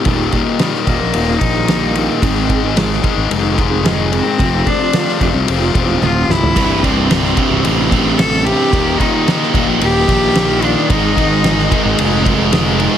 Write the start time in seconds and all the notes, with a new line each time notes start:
0.04 D#1 D#2 A#2 D#3 G3 A#3 D#4, kick, ride
0.32 D#2 A#2 D#3, kick, ride
0.46 D#3 G3 A#3 D#4
0.59 D#2 A#2 D#3 G3 D#4, snare, ride
0.74 snare
0.86 D#1 D#2 A#2 D#3 G3 A#3 D#4, kick, ride
1.01 A#1, muted steel-string acoustic guitar stroke
1.13 D#1 D#2 A#2 D#3, ride
1.28 D#3 G3 A#3 D#4
1.39 A#1 D#2 A#2 D#3 D#4, muted steel-string acoustic guitar stroke, kick, ride
1.55 D#3 G3 A#3 D#4
1.67 D#2 A#2 D#3 G3 A#3, snare, ride
1.71 D#4
1.95 D#2 A#2 D#3 G3 A#3 D#4, ride
2.09 D#3 G3 A#3 D#4
2.22 G#1 G#2 D#3 G#3 C4 D#4 G#4, kick, ride
2.48 G#2 D#3 G#3, kick, ride
2.63 G#3 C4 D#4 G#4
2.75 G#2 D#3 G#3 C4 D#4 G#4, snare, ride
2.91 snare
3.02 G#2 D#3 G#3 C4 D#4 G#4, kick, ride
3.16 G#1, muted steel-string acoustic guitar stroke
3.30 F1 G#2 D#3 G#3, ride
3.42 G#3 C4 D#4 G#4
3.57 G#2 D#3 G#3, muted steel-string acoustic guitar stroke, kick, ride
3.70 G#3 C4 D#4 G#4
3.82 G#2 D#3 G#3 C4 D#4 G#4, snare, ride
3.89 G#3
4.11 G#2 D#3 G#3 C4 D#4 G#4, ride
4.15 C4
4.24 G#3 C4 D#4 G#4
4.38 F1 F2 C3 F3 A3 C4 F4, kick, ride
4.66 F2 C3 F3 D4, kick, ride
4.79 F3 A3 C4 F4
4.93 F2 C3 F3 A3 C4 F4, snare, ride
5.08 snare
5.20 F1 F2 C3 F3 A3 C4 F4, kick, ride
5.33 C2, muted steel-string acoustic guitar stroke
5.47 F1 F2 C3 F3, ride
5.60 F3 A3 C4 F4
5.74 E1 F2 C3 F3, muted steel-string acoustic guitar stroke, kick, ride
5.86 F3 A3 C4 F4
6.00 D1 F2 C3 F3 A3 C4 F4, high tom
6.04 F4
6.27 C1 F2 C3 F3 A3 C4 F4, snare
6.31 E4
6.41 F3 A3 C4 F4, floor tom
6.56 C1 C2 G2 C3, kick, crash, ride
6.82 C2 G2 C3 C4, kick, ride
7.10 C2 G2 C3, snare, ride
7.25 snare
7.36 C2 G2 C3, kick, ride
7.51 C1
7.63 A1 C2 G2 C3, ride
7.91 C2 G2 C3, kick, ride
8.19 C2 G2 C3 A4, snare, ride
8.45 C2 G2 C3 G4, ride
8.72 D#1 D#2 A#2 D#3, kick, ride
8.99 D#2 A#2 D#3 D#4, kick, ride
9.27 D#2 A#2 D#3, snare, ride
9.42 snare
9.53 D#1 D#2 A#2 D#3, kick, ride
9.68 A#1
9.80 D#1 D#2 A#2 D#3 G4, ride
10.08 A#1 D#2 A#2 D#3, kick, ride
10.35 D#2 A#2 D#3, snare, ride
10.61 D#2 A#2 D#3 D4, ride
10.89 G#1 G#2 D#3 G#3 D#4, kick, ride
11.16 G#2 D#3 G#3, kick, ride
11.43 G#2 D#3 G#3, snare, ride
11.59 snare
11.70 G#2 D#3 G#3, kick, ride
11.85 G#1
11.98 F1 G#2 D#3 G#3, ride
12.24 G#2 D#3 G#3, kick, ride
12.51 G#2 D#3 G#3, snare, ride
12.79 G#2 D#3 G#3, ride